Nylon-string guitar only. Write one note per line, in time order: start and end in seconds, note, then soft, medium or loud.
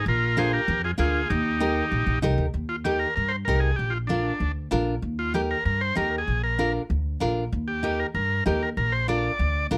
0.37 0.59 D4 medium
0.37 0.59 F4 medium
0.37 0.59 A#4 medium
0.98 1.20 D4 medium
0.98 1.20 F4 medium
0.98 1.20 A#4 medium
1.60 1.82 D#4 medium
1.60 1.83 G4 medium
1.60 1.83 A#4 medium
2.22 2.45 D#4 medium
2.22 2.45 G4 medium
2.22 2.45 A#4 loud
2.85 3.07 D#4 medium
2.85 3.07 G4 medium
2.85 3.07 A#4 medium
3.48 3.69 D#4 medium
3.48 3.70 G4 medium
3.48 3.70 A#4 medium
4.09 4.31 D4 medium
4.09 4.31 F4 medium
4.09 4.32 A#4 medium
4.71 4.93 D4 medium
4.71 4.94 F4 medium
4.71 4.94 A#4 medium
5.34 5.56 D#4 medium
5.34 5.56 G4 medium
5.34 5.56 A#4 medium
5.95 6.18 D#4 medium
5.95 6.18 G4 medium
5.95 6.18 A#4 medium
6.58 6.81 D4 medium
6.58 6.81 F4 medium
6.58 6.81 A#4 medium
7.20 7.43 D4 medium
7.20 7.43 F4 medium
7.20 7.43 A#4 medium
7.83 8.05 D#4 medium
7.83 8.05 G4 medium
7.83 8.06 A#4 medium
8.46 8.68 D#4 medium
8.46 8.68 G4 medium
8.46 8.68 A#4 medium
9.08 9.30 D4 medium
9.08 9.30 F4 medium
9.08 9.31 A#4 medium
9.71 9.78 D4 medium
9.71 9.78 F4 medium
9.71 9.78 A#4 medium